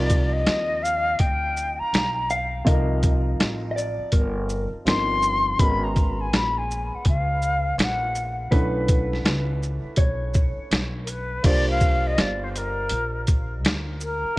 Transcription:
0.00 0.43 C2 loud
0.00 2.62 F3 medium
0.00 2.62 C4 medium
0.00 2.63 D#4 medium
0.00 2.63 F4 medium
0.00 2.64 A#4 medium
0.00 0.34 D5 medium
0.10 kick medium
0.10 closed hi-hat medium
0.10 shaker medium
0.33 0.84 D#5 medium
0.47 1.16 D#2 loud
0.47 snare loud
0.47 closed hi-hat medium
0.82 1.20 F5 medium
0.82 shaker medium
1.19 1.77 D2 medium
1.19 1.80 G5 loud
1.19 kick medium
1.19 closed hi-hat medium
1.56 shaker soft
1.79 2.29 A#5 loud
1.79 muted upright bass stroke soft
1.93 2.62 B1 medium
1.93 snare loud
1.93 closed hi-hat medium
2.30 2.66 F5 medium
2.30 shaker medium
2.65 3.36 C2 loud
2.65 4.81 F3 medium
2.65 4.81 C4 medium
2.65 4.82 D#4 medium
2.65 4.81 F4 medium
2.65 4.83 A#4 medium
2.65 3.70 D#5 loud
2.65 kick loud
2.65 closed hi-hat medium
3.03 kick medium
3.03 closed hi-hat medium
3.03 shaker medium
3.40 3.96 A1 loud
3.40 snare loud
3.40 closed hi-hat medium
3.71 3.76 D#5 medium
3.76 4.14 D5 medium
3.76 shaker medium
3.99 muted upright bass stroke soft
4.12 4.69 G1 loud
4.12 4.68 A#4 medium
4.12 kick medium
4.12 closed hi-hat medium
4.49 shaker soft
4.73 muted upright bass stroke soft
4.85 5.55 G1 loud
4.85 5.59 F3 medium
4.85 5.59 C4 soft
4.85 5.59 D4 soft
4.85 5.60 D#4 soft
4.85 5.60 A#4 medium
4.85 5.61 C6 loud
4.85 snare loud
4.85 closed hi-hat medium
5.22 shaker medium
5.59 6.32 G#1 loud
5.59 8.48 G#3 medium
5.59 8.48 B3 medium
5.59 8.48 C#4 medium
5.59 8.49 F#4 medium
5.59 8.49 A#4 medium
5.59 5.85 B5 loud
5.59 kick loud
5.59 closed hi-hat medium
5.83 6.22 A#5 medium
5.96 kick medium
5.96 closed hi-hat medium
5.96 shaker medium
6.20 6.36 G#5 medium
6.32 6.89 A#1 medium
6.32 6.59 B5 loud
6.32 snare loud
6.32 closed hi-hat medium
6.57 6.96 G#5 medium
6.71 shaker medium
6.92 7.07 F#5 medium
6.92 muted upright bass stroke soft
7.05 7.75 C#2 loud
7.05 7.76 F5 medium
7.05 kick medium
7.05 closed hi-hat medium
7.42 shaker soft
7.78 8.48 A#1 loud
7.78 8.36 F#5 medium
7.78 snare loud
7.78 closed hi-hat medium
8.15 shaker medium
8.51 9.21 B1 loud
8.51 11.40 A3 medium
8.51 11.40 C#4 medium
8.51 11.41 D4 medium
8.51 11.41 E4 medium
8.51 9.98 B4 medium
8.51 11.41 B4 medium
8.51 kick loud
8.51 closed hi-hat medium
8.88 kick loud
8.88 closed hi-hat medium
8.88 shaker medium
9.13 snare soft
9.25 9.82 C#2 medium
9.25 snare loud
9.25 closed hi-hat medium
9.63 shaker medium
9.85 muted upright bass stroke soft
9.97 10.55 B1 medium
9.97 11.40 C#5 loud
9.97 kick medium
9.97 closed hi-hat medium
10.34 kick medium
10.34 shaker soft
10.58 muted upright bass stroke soft
10.71 11.41 B1 medium
10.71 snare loud
10.71 closed hi-hat medium
11.04 11.11 A#4 medium
11.04 closed hi-hat medium
11.04 shaker medium
11.09 11.47 B4 medium
11.43 12.14 C2 loud
11.43 14.33 A#3 medium
11.43 14.33 D4 medium
11.43 14.33 F4 medium
11.43 14.34 G4 medium
11.43 14.34 C5 medium
11.43 11.68 D5 loud
11.43 kick loud
11.43 closed hi-hat medium
11.43 crash medium
11.70 12.08 F5 medium
11.80 kick medium
11.80 shaker medium
12.07 12.22 D#5 loud
12.18 12.87 G1 medium
12.18 12.44 D5 loud
12.18 snare loud
12.18 closed hi-hat medium
12.43 12.50 C5 medium
12.52 12.58 C5 medium
12.52 closed hi-hat medium
12.52 shaker medium
12.57 13.29 A#4 medium
12.89 13.64 A#1 medium
12.89 closed hi-hat medium
13.27 kick medium
13.27 closed hi-hat soft
13.27 shaker soft
13.64 14.21 D2 medium
13.64 snare loud
13.64 closed hi-hat medium
14.00 14.39 A#4 medium
14.00 shaker medium
14.24 muted upright bass stroke soft
14.36 14.39 A#3 medium

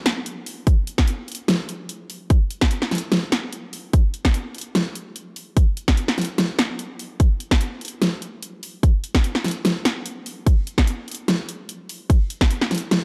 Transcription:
0.06 snare medium
0.06 closed hi-hat medium
0.26 closed hi-hat medium
0.46 open hi-hat loud
0.67 kick loud
0.67 closed hi-hat medium
0.87 closed hi-hat medium
0.98 kick medium
0.98 snare medium
1.08 closed hi-hat medium
1.28 closed hi-hat medium
1.32 closed hi-hat medium
1.35 closed hi-hat medium
1.48 snare loud
1.48 closed hi-hat medium
1.69 closed hi-hat medium
1.89 closed hi-hat medium
2.10 open hi-hat medium
2.30 kick loud
2.30 closed hi-hat medium
2.50 closed hi-hat medium
2.61 kick medium
2.61 snare medium
2.71 closed hi-hat medium
2.82 snare medium
2.91 snare medium
2.91 closed hi-hat medium
2.95 closed hi-hat medium
2.98 closed hi-hat medium
3.12 snare loud
3.12 closed hi-hat medium
3.32 snare medium
3.32 closed hi-hat medium
3.53 closed hi-hat medium
3.73 open hi-hat medium
3.93 kick loud
3.93 closed hi-hat medium
4.14 closed hi-hat medium
4.25 kick medium
4.25 snare medium
4.34 closed hi-hat medium
4.55 closed hi-hat soft
4.58 closed hi-hat medium
4.61 closed hi-hat medium
4.75 snare loud
4.75 closed hi-hat medium
4.95 closed hi-hat medium
5.16 closed hi-hat medium
5.36 open hi-hat medium
5.57 kick loud
5.57 closed hi-hat medium
5.77 closed hi-hat medium
5.88 kick medium
5.88 snare medium
5.97 closed hi-hat medium
6.08 snare medium
6.18 snare medium
6.18 closed hi-hat soft
6.21 closed hi-hat medium
6.25 closed hi-hat medium
6.38 snare loud
6.38 closed hi-hat medium
6.59 snare medium
6.59 closed hi-hat medium
6.79 closed hi-hat medium
6.99 open hi-hat medium
7.20 kick loud
7.20 closed hi-hat medium
7.40 closed hi-hat medium
7.51 kick medium
7.51 snare medium
7.61 closed hi-hat medium
7.81 closed hi-hat medium
7.85 closed hi-hat medium
7.88 closed hi-hat medium
8.02 snare loud
8.02 closed hi-hat medium
8.22 closed hi-hat medium
8.43 closed hi-hat medium
8.63 open hi-hat loud
8.83 kick loud
8.83 closed hi-hat medium
9.04 closed hi-hat medium
9.15 kick medium
9.15 snare medium
9.24 closed hi-hat medium
9.35 snare medium
9.44 snare medium
9.44 closed hi-hat medium
9.48 closed hi-hat medium
9.51 closed hi-hat medium
9.65 snare loud
9.65 closed hi-hat medium
9.85 snare medium
9.85 closed hi-hat medium
10.06 closed hi-hat medium
10.26 open hi-hat loud
10.47 kick loud
10.47 closed hi-hat medium
10.47 ride soft
10.67 closed hi-hat medium
10.78 kick medium
10.78 snare medium
10.87 closed hi-hat medium
11.08 closed hi-hat medium
11.12 closed hi-hat medium
11.15 closed hi-hat medium
11.28 snare loud
11.28 closed hi-hat medium
11.49 closed hi-hat medium
11.69 closed hi-hat medium
11.89 open hi-hat loud
12.10 kick loud
12.10 closed hi-hat medium
12.10 ride soft
12.30 closed hi-hat medium
12.41 kick medium
12.41 snare medium
12.51 closed hi-hat medium
12.61 snare medium
12.71 snare medium
12.71 closed hi-hat medium
12.75 closed hi-hat medium
12.78 closed hi-hat medium
12.91 snare loud
12.91 closed hi-hat medium

